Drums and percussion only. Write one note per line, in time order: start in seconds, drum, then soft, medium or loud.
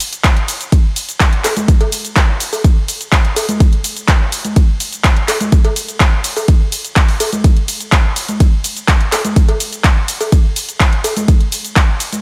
0.00 open hi-hat loud
0.00 ride medium
0.00 cabasa medium
0.13 closed hi-hat medium
0.13 cabasa soft
0.24 kick loud
0.24 clap loud
0.24 closed hi-hat medium
0.24 ride medium
0.24 cabasa soft
0.37 closed hi-hat soft
0.48 open hi-hat loud
0.48 ride medium
0.48 cabasa medium
0.61 closed hi-hat medium
0.61 cabasa soft
0.72 kick loud
0.72 closed hi-hat medium
0.72 ride medium
0.72 cabasa soft
0.96 open hi-hat loud
0.96 ride medium
0.96 cabasa medium
1.09 closed hi-hat medium
1.09 cabasa soft
1.20 kick loud
1.20 clap loud
1.20 closed hi-hat medium
1.20 ride medium
1.20 cabasa soft
1.33 closed hi-hat soft
1.44 clap medium
1.44 open hi-hat loud
1.44 ride medium
1.44 cowbell loud
1.44 cabasa medium
1.57 closed hi-hat medium
1.57 high conga loud
1.57 cabasa soft
1.68 kick loud
1.68 closed hi-hat medium
1.68 ride medium
1.68 cabasa soft
1.81 closed hi-hat soft
1.81 cowbell medium
1.92 open hi-hat loud
1.92 ride medium
1.92 cabasa medium
2.05 closed hi-hat medium
2.05 cabasa soft
2.16 kick loud
2.16 clap loud
2.16 closed hi-hat medium
2.16 ride medium
2.16 cabasa soft
2.40 open hi-hat loud
2.40 ride medium
2.40 cabasa medium
2.53 open hi-hat medium
2.53 cowbell medium
2.53 cabasa soft
2.64 kick loud
2.64 closed hi-hat medium
2.64 ride medium
2.64 cabasa soft
2.88 open hi-hat loud
2.88 ride medium
2.88 cabasa medium
3.01 closed hi-hat medium
3.01 cabasa soft
3.12 kick loud
3.12 clap loud
3.12 closed hi-hat medium
3.12 ride medium
3.12 cabasa soft
3.25 closed hi-hat soft
3.36 open hi-hat loud
3.36 ride medium
3.36 cowbell loud
3.36 cabasa medium
3.49 closed hi-hat medium
3.49 high conga loud
3.49 cabasa soft
3.60 kick loud
3.60 closed hi-hat medium
3.60 ride medium
3.60 cabasa soft
3.73 closed hi-hat soft
3.84 open hi-hat loud
3.84 ride medium
3.84 cabasa medium
3.97 closed hi-hat medium
3.97 cabasa soft
4.08 kick loud
4.08 clap loud
4.08 closed hi-hat medium
4.08 ride medium
4.08 cabasa soft
4.32 open hi-hat loud
4.32 ride medium
4.32 cabasa medium
4.45 closed hi-hat medium
4.45 high conga medium
4.45 cabasa soft
4.56 kick loud
4.56 closed hi-hat medium
4.56 ride medium
4.56 cabasa soft
4.80 open hi-hat loud
4.80 ride medium
4.80 cabasa medium
4.93 closed hi-hat medium
4.93 cabasa soft
5.04 kick loud
5.04 clap loud
5.04 closed hi-hat medium
5.04 ride medium
5.04 cabasa soft
5.17 closed hi-hat soft
5.28 clap medium
5.28 open hi-hat loud
5.28 ride medium
5.28 cowbell loud
5.28 cabasa medium
5.41 closed hi-hat medium
5.41 high conga loud
5.41 cabasa soft
5.52 kick loud
5.52 closed hi-hat medium
5.52 ride medium
5.52 cabasa soft
5.65 closed hi-hat soft
5.65 cowbell loud
5.76 open hi-hat loud
5.76 ride medium
5.76 cabasa medium
5.89 closed hi-hat medium
5.89 cabasa soft
6.00 kick loud
6.00 clap loud
6.00 closed hi-hat medium
6.00 ride medium
6.00 cabasa soft
6.24 open hi-hat loud
6.24 ride medium
6.24 cabasa medium
6.36 open hi-hat medium
6.36 cowbell medium
6.36 cabasa soft
6.48 kick loud
6.48 closed hi-hat medium
6.48 ride medium
6.48 cabasa soft
6.72 open hi-hat loud
6.72 ride medium
6.72 cabasa medium
6.85 closed hi-hat medium
6.85 cabasa soft
6.96 kick loud
6.96 clap loud
6.96 closed hi-hat medium
6.96 ride medium
6.96 cabasa soft
7.08 open hi-hat medium
7.20 open hi-hat loud
7.20 ride medium
7.20 cowbell loud
7.20 cabasa medium
7.32 closed hi-hat medium
7.32 high conga loud
7.32 cabasa soft
7.44 kick loud
7.44 closed hi-hat medium
7.44 ride medium
7.44 cabasa soft
7.57 closed hi-hat soft
7.68 open hi-hat loud
7.68 ride medium
7.68 cabasa medium
7.80 closed hi-hat medium
7.80 cabasa soft
7.92 kick loud
7.92 clap loud
7.92 closed hi-hat medium
7.92 ride medium
7.92 cabasa soft
8.16 open hi-hat loud
8.16 ride medium
8.16 cabasa medium
8.28 closed hi-hat medium
8.28 high conga medium
8.28 cabasa soft
8.40 kick loud
8.40 closed hi-hat medium
8.40 ride medium
8.40 cabasa soft
8.64 open hi-hat loud
8.64 ride medium
8.64 cabasa medium
8.77 closed hi-hat medium
8.77 cabasa soft
8.88 kick loud
8.88 clap loud
8.88 closed hi-hat medium
8.88 ride medium
8.88 cabasa soft
9.01 closed hi-hat soft
9.12 clap medium
9.12 open hi-hat loud
9.12 ride medium
9.12 cowbell loud
9.12 cabasa medium
9.25 closed hi-hat medium
9.25 high conga medium
9.25 cabasa soft
9.36 kick loud
9.36 closed hi-hat medium
9.36 ride medium
9.36 cabasa soft
9.49 closed hi-hat soft
9.49 cowbell medium
9.60 open hi-hat loud
9.60 ride medium
9.60 cabasa medium
9.73 closed hi-hat medium
9.73 cabasa soft
9.84 kick loud
9.84 clap loud
9.84 closed hi-hat medium
9.84 ride medium
9.84 cabasa soft
10.08 open hi-hat loud
10.08 ride medium
10.08 cabasa medium
10.21 open hi-hat medium
10.21 cowbell medium
10.21 cabasa soft
10.32 kick loud
10.32 closed hi-hat medium
10.32 ride medium
10.32 cabasa soft
10.56 open hi-hat loud
10.56 ride medium
10.56 cabasa medium
10.69 closed hi-hat medium
10.69 cabasa soft
10.80 kick loud
10.80 clap loud
10.80 closed hi-hat medium
10.80 ride medium
10.80 cabasa soft
10.93 closed hi-hat soft
11.04 open hi-hat loud
11.04 ride medium
11.04 cowbell medium
11.04 cabasa medium
11.17 closed hi-hat medium
11.17 high conga medium
11.17 cabasa soft
11.28 kick loud
11.28 closed hi-hat medium
11.28 ride medium
11.28 cabasa soft
11.41 closed hi-hat soft
11.52 open hi-hat loud
11.52 ride medium
11.52 cabasa medium
11.65 closed hi-hat medium
11.65 cabasa soft
11.76 kick loud
11.76 clap loud
11.76 closed hi-hat medium
11.76 ride medium
11.76 cabasa soft
12.00 open hi-hat loud
12.00 ride medium
12.00 cabasa medium
12.13 closed hi-hat medium
12.13 high conga medium
12.13 cabasa soft